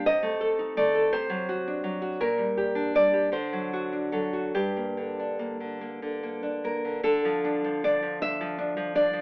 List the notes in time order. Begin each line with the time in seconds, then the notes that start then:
0.06 C3 D#5
0.23 A3
0.41 A4
0.59 D#4
0.77 A3 D5
0.95 A4
1.13 C3 C5
1.30 F#3
1.49 F#4
1.68 D4
1.84 F#3
2.02 F#4
2.20 A#2 A#4
2.38 G3
2.57 G4
2.75 D4
2.95 G3 D5
3.13 G4
3.32 D3 C5
3.53 F#3
3.73 F#4
3.93 D4
4.12 F#3 A4
4.33 F#4
4.55 G2 G4
4.77 A#3
4.97 D3
5.19 D4
5.39 A#3
5.60 D3
5.81 A#3
6.02 D3
6.23 A#3
6.43 D4
6.64 A#3 A#4
6.85 D3
7.03 D3 A4
7.25 F3
7.44 D4
7.64 F3
7.84 D4 D5
8.02 F3
8.22 D4 E5
8.41 F3
8.58 D4
8.77 F3
8.95 D4 D5
9.13 F3